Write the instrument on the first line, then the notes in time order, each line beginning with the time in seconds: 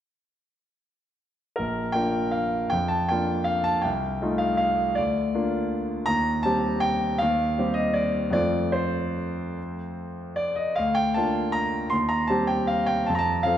grand piano
1.56 A#1 A#4
1.92 A#3 D4 F4 G5
2.31 F5
2.70 F2 G5
2.88 A5
3.08 A#3 D4 F4 G5
3.44 F5
3.64 A5
3.82 C2 G5
4.22 A3 D#4 F4
4.38 F5
4.57 F5
4.95 D2 D5
5.34 A#3 D4 F4
6.06 D#2 A#5
6.43 G3 C4 G4 A5
6.80 G5
7.18 D#2 F5
7.58 G3 C4 G4
7.74 D#5
7.94 D5
8.30 F2 A3 C4 F4 D5
8.72 C5
10.36 D5
10.56 D#5
10.76 D2 F5
10.95 G5
11.14 A#3 D4 F4 A5
11.52 A#5
11.90 D#2 C6
12.09 A#5
12.27 G3 C4 G4 A5
12.47 G5
12.67 F5
12.86 G5
13.06 F2 A5
13.15 A5 A#5
13.43 F3 C4 A4 F5